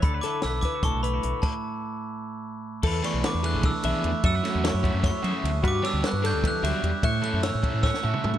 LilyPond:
<<
  \new Staff \with { instrumentName = "Glockenspiel" } { \time 7/8 \key d \lydian \tempo 4 = 150 b''8 d'''8 e'''8 d'''8 cis'''8 b''4 | a''2~ a''8 r4 | \key e \dorian b''8 cis'''8 d'''8 fis'''8 e'''4. | e'''4 cis'''4 cis'''4 r8 |
d'''8 e'''8 fis'''8 g'''8 fis'''4. | fis'''8 fis'''8 e'''4 e'''4 r8 | }
  \new Staff \with { instrumentName = "Clean electric guitar" } { \time 7/8 \key d \lydian d''8 a'4 b'8 a'8 b'4 | r2. r8 | \key e \dorian a'8 d''8 b'8 a'4 e''4 | e''4 cis''4 cis''8 e''4 |
fis'8 cis''8 b'8 a'4 e''4 | e''4 cis''4 cis''8 e''4 | }
  \new Staff \with { instrumentName = "Clean electric guitar" } { \time 7/8 \key d \lydian << { a'16 b'16 e'8 b'8 e'16 fis'8. e'16 fis'8. | r2. r8 | \key e \dorian a'4 d'4 d'8 e'4 | a'16 b'8. e'4 e'8 gis'4 |
b'4 fis'2~ fis'8 | cis''4 cis'4 cis'8 fis'4 | } \\ { d2 a,4 a8 | r2. r8 | e8 a4 a4. a8 | fis8 a4 a4. a8 |
g8 d'4 d'8 e8 fis8 g8 | a,8 a4 a4. a8 | } >> }
  \new Staff \with { instrumentName = "Overdriven electric guitar" } { \time 7/8 \key d \lydian r2. r8 | r2. r8 | \key e \dorian r8 <e b d' gis'>8 r8 <e b d' gis'>8 r8 <e b d' gis'>8 r8 | r8 <fis a cis' fis'>8 r8 <fis a cis' fis'>8 r8 <fis a cis' fis'>8 r8 |
r8 <g b d' g'>8 r8 <g b d' g'>8 r8 <g b d' g'>8 r8 | r8 <a cis' e' a'>8 r8 <a cis' e' a'>8 r8 <a cis' e' a'>8 r8 | }
  \new Staff \with { instrumentName = "Fingered electric bass" } { \clef bass \time 7/8 \key d \lydian d,8 r8 b,,8 r8 b,,16 b,,8. b,,16 r16 | r2. r8 | \key e \dorian e,8 r16 b,,16 r16 e,8 b,,8 r16 b,,16 r16 e,16 r16 | fis,8 r16 e,8 fis,8 fis,8 r16 fis16 r16 d,8 |
g,8 r16 d,16 r16 g,8 d,8 r16 d,16 r16 e,16 r16 | a,8 r16 fis,8 a,8 a,8 r16 a,16 r16 a,8 | }
  \new DrumStaff \with { instrumentName = "Drums" } \drummode { \time 7/8 <hh bd>8 <hh sn>8 <hh sn>8 <hh bd sn>8 <hh bd>8 hh8 hh8 | <cymc bd>4 r4 r4. | <cymc bd>8 <cymr sn>8 <cymr sn>8 cymr8 <bd cymr>8 cymr8 cymr8 | <bd cymr>8 <cymr sn>8 <cymr sn>8 <bd cymr>8 <bd cymr sn>8 cymr8 cymr8 |
<bd cymr>8 <cymr sn>8 <cymr sn>8 <cymr sn>8 <bd cymr>8 <cymr sn>8 cymr8 | <bd cymr>8 cymr8 <cymr sn>8 <bd cymr>8 <bd sn>16 sn8 toml16 tomfh16 tomfh16 | }
>>